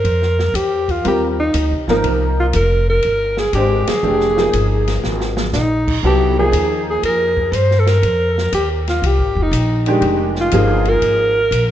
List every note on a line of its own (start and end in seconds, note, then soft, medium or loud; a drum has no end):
0.00 0.57 A#4 loud
0.04 0.53 F2 medium
0.04 ride soft
0.22 snare soft
0.39 snare soft
0.54 1.02 E2 medium
0.54 0.92 G4 medium
0.54 hi-hat pedal medium
0.54 ride medium
0.88 1.05 F4 medium
0.88 kick soft
0.88 ride soft
1.04 1.53 D#2 medium
1.04 1.35 G3 medium
1.04 1.35 C4 medium
1.04 1.35 F4 medium
1.04 1.22 G4 medium
1.04 1.35 A#4 medium
1.04 ride medium
1.40 1.85 D#4 medium
1.54 1.73 D2 medium
1.54 hi-hat pedal medium
1.54 ride medium
1.72 1.87 C2 medium
1.88 2.03 G#1 medium
1.88 2.51 F3 medium
1.88 2.51 A#3 medium
1.88 2.51 D#4 medium
1.88 2.52 A#4 medium
1.88 snare soft
2.04 2.52 C2 medium
2.04 ride medium
2.40 2.47 F4 medium
2.53 3.02 F1 medium
2.53 2.86 A#4 loud
2.53 hi-hat pedal medium
2.53 ride medium
2.90 3.40 A#4 loud
3.03 3.52 G1 medium
3.03 ride medium
3.37 3.54 G#4 medium
3.37 snare soft
3.53 3.85 G#1 medium
3.53 3.85 G#3 medium
3.53 3.85 D4 medium
3.53 3.90 G4 medium
3.53 3.85 G4 soft
3.53 3.86 C5 medium
3.53 hi-hat pedal medium
3.53 ride medium
3.87 4.88 G#4 medium
3.87 muted upright bass stroke soft
3.87 snare medium
3.87 ride medium
4.03 4.52 F1 medium
4.03 4.34 E3 medium
4.03 4.34 A3 medium
4.03 4.34 D4 medium
4.03 4.34 G4 medium
4.20 snare soft
4.36 5.43 F3 medium
4.36 5.44 A#3 medium
4.36 5.43 D#4 medium
4.36 5.44 G#4 medium
4.36 snare soft
4.53 5.02 G1 medium
4.53 hi-hat pedal medium
4.53 ride medium
4.88 snare soft
4.88 ride medium
5.03 5.52 G#1 medium
5.03 snare soft
5.21 snare medium
5.37 snare medium
5.53 6.02 A#1 medium
5.53 6.00 D#4 medium
5.53 snare medium
5.53 hi-hat pedal medium
5.88 kick medium
5.88 crash medium
6.03 6.52 C2 medium
6.03 6.34 F#3 medium
6.03 6.34 B3 medium
6.03 6.35 E4 medium
6.03 6.37 G4 medium
6.03 6.35 A4 medium
6.38 7.44 F3 medium
6.38 7.44 A#3 medium
6.38 7.44 D#4 medium
6.38 7.44 G#4 medium
6.38 6.85 G#4 medium
6.52 7.01 D#2 medium
6.52 hi-hat pedal medium
6.52 ride medium
6.90 7.04 G#4 medium
7.03 7.51 F2 medium
7.03 7.53 A#4 medium
7.03 ride medium
7.37 kick medium
7.52 8.01 G2 medium
7.52 7.57 B4 medium
7.52 hi-hat pedal medium
7.52 ride medium
7.56 7.81 C5 loud
7.71 snare soft
7.79 7.89 A4 medium
7.87 8.53 A#4 loud
7.87 snare soft
7.87 ride medium
8.02 8.51 F2 medium
8.02 ride medium
8.38 snare soft
8.52 9.01 D#2 medium
8.52 8.69 G4 medium
8.52 hi-hat pedal medium
8.52 ride medium
8.88 9.08 F4 medium
8.88 snare soft
8.88 ride soft
9.02 9.20 C2 medium
9.02 ride medium
9.06 9.44 G4 medium
9.18 9.35 G#1 medium
9.35 9.51 F1 medium
9.35 kick medium
9.43 9.89 D#4 medium
9.51 10.00 A#1 medium
9.51 hi-hat pedal medium
9.51 ride medium
9.86 10.49 D#3 medium
9.86 10.49 G#3 medium
9.86 10.50 D4 medium
9.86 10.50 G4 medium
9.86 ride soft
10.01 10.50 F1 medium
10.01 ride medium
10.35 snare soft
10.41 10.90 F4 loud
10.52 11.01 G1 medium
10.52 11.29 F3 medium
10.52 11.30 A#3 medium
10.52 11.29 D#4 medium
10.52 11.30 G#4 medium
10.52 hi-hat pedal medium
10.52 ride medium
10.85 11.71 A#4 loud
10.85 ride soft
11.02 11.50 G#1 medium
11.02 ride medium
11.51 11.71 A#1 medium
11.51 hi-hat pedal medium
11.51 ride medium